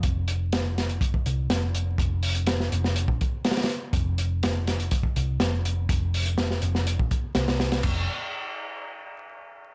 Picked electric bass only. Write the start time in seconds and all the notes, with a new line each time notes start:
0.04 F1
1.26 C2
1.50 F1
1.98 F1
2.72 F1
3.08 A#1
3.93 F1
5.16 C2
5.40 F1
5.89 F1
6.63 F1
7.00 A#1
7.24 muted picked electric bass stroke
7.36 C2
7.84 F1